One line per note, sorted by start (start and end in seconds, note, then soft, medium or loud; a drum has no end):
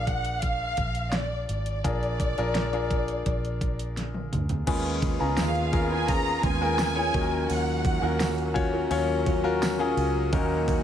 0.00 0.74 A#1 medium
0.00 0.72 F3 medium
0.00 1.84 D4 medium
0.00 1.84 F4 medium
0.00 1.84 G#4 medium
0.00 1.84 A#4 medium
0.07 0.42 F#5 medium
0.07 kick medium
0.07 closed hi-hat medium
0.25 closed hi-hat soft
0.42 1.13 F5 medium
0.42 kick medium
0.42 closed hi-hat medium
0.77 1.45 A#1 medium
0.77 kick medium
0.77 closed hi-hat medium
0.95 closed hi-hat soft
1.12 1.48 D5 medium
1.12 snare loud
1.12 closed hi-hat medium
1.49 1.82 G#1 medium
1.49 3.92 D5 medium
1.49 closed hi-hat medium
1.66 closed hi-hat soft
1.84 2.34 A#1 medium
1.84 2.29 D4 medium
1.84 2.29 F4 medium
1.84 2.29 G#4 medium
1.84 2.29 A#4 medium
1.84 kick loud
1.84 closed hi-hat medium
2.03 closed hi-hat soft
2.20 kick medium
2.20 closed hi-hat medium
2.38 3.22 A#1 medium
2.38 2.67 D4 medium
2.38 2.67 F4 medium
2.38 2.67 G#4 medium
2.38 2.67 A#4 medium
2.38 closed hi-hat soft
2.55 snare loud
2.55 closed hi-hat medium
2.73 3.92 D4 medium
2.73 3.92 F4 medium
2.73 3.92 G#4 medium
2.73 3.92 A#4 medium
2.73 closed hi-hat soft
2.91 kick medium
2.91 closed hi-hat medium
3.08 closed hi-hat soft
3.26 4.28 A#1 medium
3.26 kick medium
3.26 closed hi-hat medium
3.45 closed hi-hat soft
3.61 kick medium
3.61 closed hi-hat medium
3.79 closed hi-hat soft
3.97 snare soft
3.97 closed hi-hat medium
4.14 high tom soft
4.33 4.65 D2 medium
4.33 closed hi-hat medium
4.33 mid tom medium
4.49 closed hi-hat soft
4.49 floor tom medium
4.66 5.17 D#2 loud
4.66 5.69 D#3 medium
4.66 7.12 D#3 medium
4.66 5.20 G#3 medium
4.66 7.12 B3 medium
4.66 5.20 C#4 medium
4.66 5.12 C#4 medium
4.66 5.19 F4 medium
4.66 5.12 F4 medium
4.66 7.12 F4 medium
4.66 7.12 G#4 medium
4.66 5.12 G#4 medium
4.66 5.12 B4 medium
4.66 5.18 B4 medium
4.66 kick loud
4.66 crash loud
4.66 ride medium
5.02 kick loud
5.02 ride medium
5.19 5.37 C#2 medium
5.19 5.64 C#4 medium
5.19 5.92 C#4 soft
5.19 5.65 F4 medium
5.19 5.91 F4 soft
5.19 5.65 G#4 medium
5.19 5.89 B4 medium
5.19 5.65 A#5 medium
5.37 6.40 D#2 loud
5.37 5.87 F5 medium
5.37 snare loud
5.37 ride medium
5.37 tambourine medium
5.55 ride soft
5.72 6.02 C#4 medium
5.72 6.03 F4 medium
5.72 6.03 G#4 medium
5.72 6.03 A#4 medium
5.72 kick medium
5.72 ride medium
5.90 6.43 C#4 medium
5.90 6.44 F4 medium
5.90 6.44 B4 medium
5.90 6.09 G#5 medium
6.08 6.53 C#4 medium
6.08 6.53 F4 medium
6.08 6.52 G#4 medium
6.08 6.53 A#5 medium
6.08 6.44 A#5 loud
6.08 kick medium
6.08 ride medium
6.43 7.10 D#2 loud
6.43 6.97 G#3 medium
6.43 6.97 C#4 medium
6.43 6.96 F4 medium
6.43 6.95 B4 medium
6.43 7.50 G#5 loud
6.43 kick medium
6.43 ride medium
6.61 6.91 C#4 medium
6.61 6.91 F4 medium
6.61 6.91 G#4 medium
6.61 6.91 A#4 medium
6.79 snare loud
6.79 ride medium
6.79 tambourine loud
6.95 7.12 C#4 medium
6.95 7.13 C#4 soft
6.95 7.14 F4 medium
6.95 7.13 F4 medium
6.95 7.13 G#4 medium
6.95 7.14 B4 medium
6.95 7.14 C#5 medium
7.13 7.47 D#2 loud
7.13 8.06 D#3 medium
7.13 8.16 D#3 medium
7.13 10.29 F#3 medium
7.13 8.06 F#3 medium
7.13 7.89 F#3 medium
7.13 10.29 A#3 medium
7.13 10.29 C#4 medium
7.13 7.88 C#4 medium
7.13 8.04 C#4 medium
7.13 8.02 F4 medium
7.13 7.21 G#4 medium
7.13 8.02 A#4 medium
7.13 kick loud
7.13 ride medium
7.21 7.92 A#4 medium
7.50 7.99 D#2 loud
7.50 8.56 F#5 medium
7.50 ride medium
7.85 kick loud
7.85 ride medium
8.02 8.87 D#2 loud
8.02 8.47 F#3 medium
8.02 8.47 C#4 medium
8.02 8.75 C#4 medium
8.02 8.73 F4 medium
8.02 8.47 A#4 medium
8.02 8.73 A#4 medium
8.20 snare loud
8.20 ride medium
8.20 tambourine medium
8.38 ride soft
8.54 8.85 C#4 medium
8.54 8.85 F4 medium
8.54 8.85 F#4 medium
8.54 8.85 C#5 loud
8.54 kick loud
8.54 ride medium
8.73 9.25 C#4 soft
8.73 9.26 F4 medium
8.73 9.26 A#4 medium
8.91 9.93 D#2 medium
8.91 9.36 F#3 medium
8.91 9.35 C#4 loud
8.91 9.36 F4 medium
8.91 9.36 C#5 loud
8.91 ride medium
9.26 9.79 F#3 medium
9.26 9.80 C#4 medium
9.26 9.80 F4 medium
9.26 9.79 A#4 medium
9.26 kick medium
9.26 ride medium
9.43 9.74 C#4 medium
9.43 9.74 F4 medium
9.43 9.74 F#4 medium
9.43 9.74 A#4 loud
9.62 snare loud
9.62 ride medium
9.62 tambourine medium
9.79 10.24 F#3 medium
9.79 10.24 C#4 loud
9.79 10.32 C#4 soft
9.79 10.24 F4 medium
9.79 10.33 F4 medium
9.79 10.24 G#4 loud
9.79 10.33 A#4 medium
9.97 10.30 C#2 medium
9.97 ride medium
10.32 10.82 D#2 loud
10.32 10.83 A#2 medium
10.32 10.83 D#3 medium
10.32 10.83 F#3 medium
10.32 10.83 A#3 medium
10.32 10.83 C#4 medium
10.32 10.77 C#4 medium
10.32 10.83 C#4 medium
10.32 10.77 D#4 medium
10.32 10.83 D#4 medium
10.32 10.83 F#4 medium
10.32 10.77 F#4 medium
10.32 10.77 A#4 medium
10.32 10.83 A#4 medium
10.32 kick loud
10.32 ride medium
10.68 kick medium
10.68 ride medium